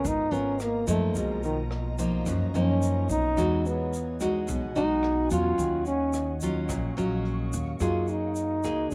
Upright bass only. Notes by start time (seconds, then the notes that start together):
0.05 G#1
0.32 G#1
0.88 F#2
1.15 B1
2.26 F#2
2.54 F#2
3.09 B1
3.38 E2
4.49 B1
4.76 B1
5.32 E2
5.59 D#2
6.69 A#1
6.98 A#1
7.53 D#2
7.81 F#2
8.64 C#2